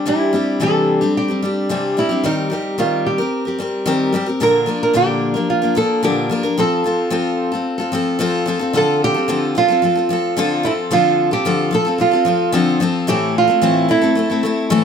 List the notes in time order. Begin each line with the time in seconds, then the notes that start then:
0.06 C3 E3 G3 C4 D4 E4 G4
0.33 G3 C4 D4 G4
0.60 C3 E3 G3 C4 D4 G4 A4
1.01 G3 C4 D4 G4
1.17 G4
1.28 G3 C4 D4 G4
1.42 G3 C4 D4 G4
1.69 C3 E3 G3 C4 D4 G4
1.97 G3 C4 D4 E4 G4
2.09 G3 C4 D4 G4
2.24 D#3 G3 C4 D#4 G4 A#4
2.50 G3 C4 G4 A#4
2.78 D#3 G3 C4 F4 G4 A#4
3.06 G4
3.18 C4 G4 A#4
3.45 C4 G4 A#4
3.59 G3 C4 G4 A#4
3.86 D#3 G3 C4 G4 A#4
4.13 G3 C4 G4 A#4
4.26 C4 G4 A#4
4.40 A#2 D3 F3 A#3 D4 A#4
4.66 F3 A#3 D4 A#4
4.83 A#4
4.94 A#2 D3 F3 A#3 D4 G4 A#4
5.34 F3 A#3 D4 A#4
5.50 F4
5.62 F3 A#3 D4 A#4
5.75 F3 A#3 D4 A4 A#4
6.03 A#2 D3 F3 A#3 D4 G4 A#4
6.30 F3 A#3 D4 A#4
6.43 F3 A#3 D4 A#4
6.58 F3 C4 F4 A4
6.84 F3 C4 F4 A4
7.10 F3 C4 F4 A4
7.52 C4 F4 A4
7.78 C4 F4 A4
7.92 F3 C4 F4 A4
8.19 F3 C4 F4 A4
8.46 F3 C4 F4 A4
8.59 C4 F4 A4
8.73 D3 F3 C4 F4 A4
9.04 G4
9.14 C4 F4 A4
9.28 D3 F3 C4 F4 A4
9.55 F3 C4 F4 A4
9.68 C4 F4 A4
9.82 F3 C4 F4 A4
9.95 C4 F4 A4
10.09 F3 C4 F4 A4
10.37 D3 F3 C4 F4 A4
10.63 F3 C4 E4 F4 A4
10.91 D3 F3 C4 F4 A4
11.31 C4 F4 G4 A4
11.45 D3 F3 C4 F4 A4
11.71 F3 C4 F4 A4
11.85 C4 F4 A4
11.98 F3 C4 F4 A4
12.11 C4 F4 A4
12.25 F3 C4 F4 A4
12.52 D3 F3 C4 F4 A4
12.80 F3 C4 F4 A4
13.07 A2 E3 A3 C4 E4 G4 A4
13.38 F4
13.48 A3 C4 E4 A4
13.61 A2 E3 A3 C4 E4 A4
13.89 A3 C4 E4 A4
14.02 A3 C4 E4 A4
14.15 A3 C4 E4 A4
14.30 A3 C4 E4 A4
14.43 A3 C4 E4 A4
14.70 A2 E3 A3 C4 E4 A4